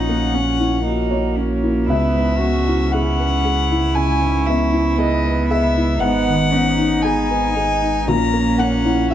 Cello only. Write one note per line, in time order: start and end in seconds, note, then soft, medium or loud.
0.00 0.84 C#4 medium
0.85 1.37 D#4 medium
1.36 1.88 C#4 medium
1.87 2.39 E4 medium
2.38 2.91 F#4 medium
2.90 5.98 E4 medium
5.99 6.52 D#4 medium
6.51 7.05 C#4 medium
7.03 7.56 B3 medium
7.55 8.07 D#4 medium
8.06 9.14 C#4 medium